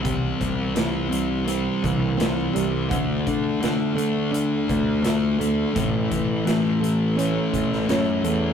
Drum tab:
HH |x-x-x-x-x-x-x-x-|x-x-x-x-x-x-x-x-|x-x-x-x-x-x-x-x-|
SD |----o-------o---|----o-------o---|----o------oo---|
BD |o-o-------o-----|o-o-------o-----|o-o-------o-----|